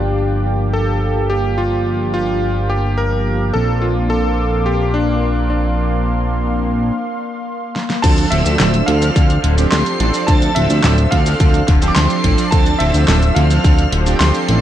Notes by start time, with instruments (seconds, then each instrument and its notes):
Already playing: analog synth bass G1, analog polysynth F3 A#3 D4 G4, electric grand piano D4, analog synth pad G4 F5 G5 D6
0.73 electric grand piano A4
1.30 electric grand piano G4
1.58 electric grand piano F4
2.14 electric grand piano F4
2.70 electric grand piano G4
2.98 electric grand piano A#4
3.54 analog synth bass A#1, analog polysynth F3 A#3 C4 D4, analog synth pad A#3 F5 C6 D6, electric grand piano A4
3.82 electric grand piano F4
4.10 electric grand piano A4
4.66 electric grand piano G4
4.94 electric grand piano D4
5.50 electric grand piano D4
7.76 snare
7.90 snare
8.02 analog synth bass D2, overdriven electric guitar D3, analog synth pad F3 D4 A4 C5, analog polysynth F3 C4 D4 A4, electric grand piano A5, string machine A6, kick, closed hi-hat, crash, shaker
8.18 closed hi-hat, shaker
8.30 analog synth bass D1, overdriven electric guitar D3, analog polysynth F3 C4 D4 A4, electric grand piano E5, string machine E6, closed hi-hat
8.46 analog synth bass D2, overdriven electric guitar F3, closed hi-hat, shaker
8.60 analog synth bass D1, analog polysynth F3 C4 D4 A4, overdriven electric guitar A3, snare, clap, closed hi-hat, shaker
8.74 closed hi-hat, shaker
8.86 analog synth bass D2, overdriven electric guitar D3, analog polysynth F3 C4 D4 A4, electric grand piano F5, string machine F6, closed hi-hat
9.02 overdriven electric guitar F3, analog polysynth F3 C4 D4 A4, closed hi-hat, shaker
9.16 analog synth bass D2, overdriven electric guitar D3, analog polysynth F3 C4 D4 A4, kick, closed hi-hat, shaker
9.30 closed hi-hat, shaker
9.44 analog synth bass D1, overdriven electric guitar D3, closed hi-hat
9.58 overdriven electric guitar F3, analog polysynth F3 C4 D4 G4, closed hi-hat, shaker
9.71 analog synth bass D2, analog polysynth F3 C4 D4 G4, overdriven electric guitar A3, electric grand piano C6, string machine C7, snare, clap, closed hi-hat, shaker
9.86 closed hi-hat, shaker
10.00 analog synth bass A1, overdriven electric guitar D3, analog polysynth F3 C4 D4 A4, closed hi-hat
10.14 analog polysynth F3 C4 D4 D5, overdriven electric guitar F3, closed hi-hat, shaker
10.27 analog synth bass D2, overdriven electric guitar D3, analog polysynth F3 C4 D4 A4, electric grand piano A5, string machine A6, kick, closed hi-hat, shaker
10.42 closed hi-hat, shaker
10.55 analog synth bass D1, overdriven electric guitar D3, analog polysynth F3 C4 D4 A4, electric grand piano E5, string machine E6, closed hi-hat
10.70 analog synth bass D2, overdriven electric guitar F3, closed hi-hat, shaker
10.84 analog synth bass D1, analog polysynth F3 C4 D4 A4, overdriven electric guitar A3, snare, clap, closed hi-hat, shaker
10.98 closed hi-hat, shaker
11.11 analog synth bass D2, overdriven electric guitar D3, analog polysynth F3 C4 D4 A4, electric grand piano F5, string machine F6, kick, closed hi-hat
11.26 overdriven electric guitar F3, analog polysynth F3 C4 D4 A4, closed hi-hat, shaker
11.40 analog synth bass D2, overdriven electric guitar D3, analog polysynth F3 C4 D4 A4, kick, closed hi-hat, shaker
11.54 closed hi-hat, shaker
11.68 analog synth bass D1, overdriven electric guitar D3, kick, snare, closed hi-hat
11.82 overdriven electric guitar F3, analog polysynth F3 C4 D4 G4, closed hi-hat, shaker
11.88 electric grand piano D6, string machine D7
11.95 analog synth bass D2, analog polysynth F3 C4 D4 G4, overdriven electric guitar A3, electric grand piano C6, string machine C7, snare, clap, closed hi-hat, shaker
12.10 closed hi-hat, shaker
12.24 analog synth bass A1, overdriven electric guitar D3, analog polysynth F3 C4 D4 A4, kick, closed hi-hat
12.38 overdriven electric guitar F3, analog polysynth F3 C4 D4 D5, closed hi-hat, shaker
12.51 analog synth bass D2, overdriven electric guitar D3, analog polysynth F3 C4 D4 A4, electric grand piano A5, string machine A6, kick, closed hi-hat, shaker
12.66 closed hi-hat, shaker
12.79 analog synth bass D1, overdriven electric guitar D3, analog polysynth F3 C4 D4 A4, electric grand piano E5, string machine E6, closed hi-hat
12.94 analog synth bass D2, overdriven electric guitar F3, closed hi-hat, shaker
13.08 analog synth bass D1, analog polysynth F3 C4 D4 A4, overdriven electric guitar A3, snare, clap, closed hi-hat, shaker
13.22 closed hi-hat, shaker
13.35 analog synth bass D2, overdriven electric guitar D3, analog polysynth F3 C4 D4 A4, electric grand piano F5, string machine F6, closed hi-hat
13.50 overdriven electric guitar F3, analog polysynth F3 C4 D4 A4, closed hi-hat, shaker
13.64 analog synth bass D2, overdriven electric guitar D3, analog polysynth F3 C4 D4 A4, kick, closed hi-hat, shaker
13.79 closed hi-hat, shaker
13.92 analog synth bass D1, overdriven electric guitar D3, closed hi-hat
14.07 overdriven electric guitar F3, analog polysynth F3 C4 D4 G4, closed hi-hat, shaker
14.19 analog synth bass D2, analog polysynth F3 C4 D4 G4, overdriven electric guitar A3, electric grand piano C6, string machine C7, snare, clap, closed hi-hat, shaker
14.35 closed hi-hat, shaker
14.48 analog synth bass A1, overdriven electric guitar D3, analog polysynth F3 C4 D4 A4, closed hi-hat